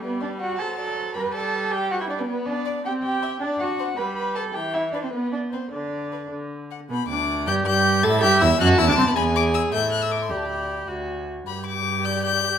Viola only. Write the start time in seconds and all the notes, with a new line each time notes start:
0.01 G3
0.59 F#3
1.15 G3
2.28 B3
2.84 C4
3.41 D4
3.98 G3
4.55 E3
5.14 B3
5.72 D3
6.31 D3
6.90 B3
7.09 D4
7.47 G4
7.66 G4
8.04 A4
8.23 G4
8.42 E4
8.60 F#4
8.79 E4
8.88 D4
8.98 C4
9.07 B3
9.16 G#4
9.73 A4
10.31 G4
10.88 F#4
11.47 G4